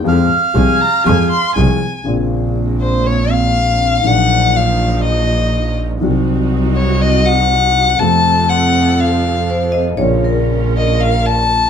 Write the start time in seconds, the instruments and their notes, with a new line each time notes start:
0.04 upright piano F2 F3 G#3 C4 G#4, double bass F2, bandoneon F5
0.54 upright piano C2 C3 F3 G#3 C4 G#4, double bass C2, violin G#5
0.81 violin A#5
1.04 upright piano F2 F3 G#3 C4 G#4, double bass F2, violin G#5
1.31 violin C6
1.56 upright piano C2 C3 F3 G#3 C4 G#4, double bass C2, violin G#5
2.04 upright piano A#1 A#2 C#3 A#3 C4 F4, double bass A#1, string section A#3 C4
2.81 violin C5
3.07 violin C#5
3.31 violin F5
4.02 upright piano A#1 A#2 D#3 F#3 A#3, double bass A#1, string section F3 F#3 D#4
4.07 upright piano F3, violin F#5
4.56 violin F5
5.05 violin D#5
6.00 upright piano C2 C3 D#3 F#3 C4 F#4, double bass C2, string section C4 D#4 F#4
6.76 violin C#5
7.02 violin D#5
7.26 violin F#5
7.98 double bass F2, upright piano F2 C3 F3 A3 A4, string section F3 C4 A4, violin A5
8.49 violin F#5
9.00 violin F5
9.50 vibraphone C5
9.72 vibraphone D#5
9.97 upright piano A#1 A#2 C#3 F3 A#3 F4, double bass A#1, string section C#4 F4 A#4, vibraphone C#5
10.24 vibraphone A#4
10.77 violin D#5
11.01 violin F5
11.26 violin A5